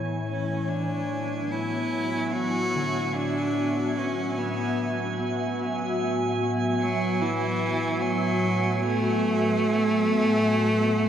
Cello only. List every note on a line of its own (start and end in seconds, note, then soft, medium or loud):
0.28 0.70 C#4 medium
0.69 1.54 D4 medium
1.52 2.34 E4 medium
2.33 3.16 F#4 loud
3.15 4.00 D4 loud
3.98 4.39 C#4 medium
4.38 5.19 B3 medium
6.80 7.23 F#3 loud
7.21 8.03 E3 loud
8.02 8.83 F#3 medium
8.82 11.09 A3 loud